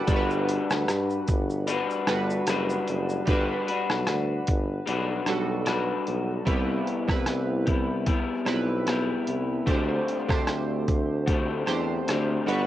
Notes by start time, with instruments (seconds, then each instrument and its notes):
Already playing: clean electric guitar B4, synth keys F#5
0.07 tuba G1, clean electric guitar G3 D4 F#4, synth keys G3 D4 F#4 A4, kick, closed hi-hat, shaker
0.12 clean electric guitar B4
0.16 synth keys B4
0.30 shaker
0.49 closed hi-hat, shaker
0.70 tuba D2, cross-stick, shaker
0.87 tuba G2, cross-stick, closed hi-hat, shaker
1.10 shaker
1.28 tuba G1, kick, closed hi-hat, shaker
1.50 shaker
1.67 clean electric guitar G3 D4 F#4 B4, closed hi-hat, shaker
1.90 shaker
2.07 tuba G1, synth keys G3 D4 F#4 B4, cross-stick, closed hi-hat, shaker
2.30 shaker
2.47 tuba F#1, clean electric guitar G3 D4 F#4 B4, cross-stick, closed hi-hat, shaker
2.70 shaker
2.88 tuba F#1, closed hi-hat, shaker
3.09 shaker
3.26 tuba G1, synth keys G3 D4 F#4 B4, clean electric guitar G3 D4, kick, closed hi-hat
3.30 clean electric guitar F#4 B4
3.67 clean electric guitar D4 F#4 B4, closed hi-hat
3.90 tuba B1, cross-stick
4.07 tuba D2, cross-stick, closed hi-hat
4.47 tuba G1, kick, closed hi-hat
4.86 tuba B1, clean electric guitar G3 D4 F#4 B4, closed hi-hat
5.26 tuba B1, synth keys G3 D4 F#4 A4, cross-stick, closed hi-hat
5.65 clean electric guitar G3 D4 F#4 B4, cross-stick, closed hi-hat
6.07 tuba B1, closed hi-hat
6.45 tuba C2, clean electric guitar C3 B3 E4 G4, synth keys G3 C4 E4 B4, kick, closed hi-hat
6.87 closed hi-hat
7.07 tuba C2, synth keys G3 C4 E4 B4, kick, cross-stick
7.26 cross-stick, closed hi-hat
7.66 clean electric guitar B3 E4 G4, kick, closed hi-hat
8.06 clean electric guitar B3 E4 G4, kick, closed hi-hat
8.45 tuba B1, synth keys G3 C4 E4 B4, cross-stick, closed hi-hat
8.87 clean electric guitar B3 E4 G4, cross-stick, closed hi-hat
9.27 tuba C2, closed hi-hat
9.66 tuba D2, clean electric guitar D3 A3 C4, synth keys A3 D4 G4 C5, kick, closed hi-hat
9.71 clean electric guitar G4
10.08 closed hi-hat
10.28 tuba D2, synth keys A3 D4 G4 C5, kick, cross-stick
10.47 cross-stick, closed hi-hat
10.88 kick, closed hi-hat
11.26 clean electric guitar D3 A3 C4 G4, kick, closed hi-hat
11.66 tuba E2, synth keys A3 D4 G4 C5, cross-stick, closed hi-hat
12.07 tuba D2, clean electric guitar D3 A3 C4 G4, cross-stick, closed hi-hat
12.46 tuba G1, synth keys G3 D4 F#4 B4, clean electric guitar B3 D4 F#4, closed hi-hat
12.51 clean electric guitar G3